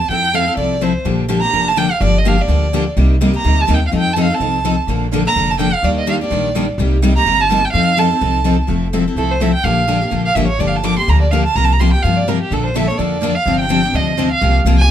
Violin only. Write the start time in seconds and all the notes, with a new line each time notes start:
Already playing: A5
0.11 G5
0.35 F5
0.58 D5
0.82 C5
1.41 A#5
1.68 A5
1.78 G5
1.91 F5
2.03 D5
2.18 D#5
2.28 F5
2.41 D5
3.37 A#5
3.61 A5
3.74 G5
3.87 F5
3.99 G5
4.13 A5
4.23 F5
4.34 A5
5.27 A#5
5.51 A5
5.60 G5
5.74 F5
5.84 D5
5.95 D5 D#5
6.09 F5
6.21 D5
7.17 A#5
7.41 A5
7.65 G5
7.73 F5
7.99 A5
9.18 A4
9.31 C5
9.42 E5
9.54 G5
9.64 F5
10.26 F5
10.35 E5
10.47 C#5
10.60 D5
10.67 F5
10.76 A5
10.84 D6
10.99 C6
11.09 A#5
11.21 D5
11.31 F5
11.46 A5
11.56 A#5
11.64 A5
11.73 A#5
11.80 C6
11.93 G5
12.03 F5
12.17 D5
12.28 A#4
12.42 G4
12.53 A4
12.66 C5
12.76 E5
12.87 C#5
12.98 D5
13.35 F5
13.60 G5
13.95 D#5
14.32 F5
14.78 G#5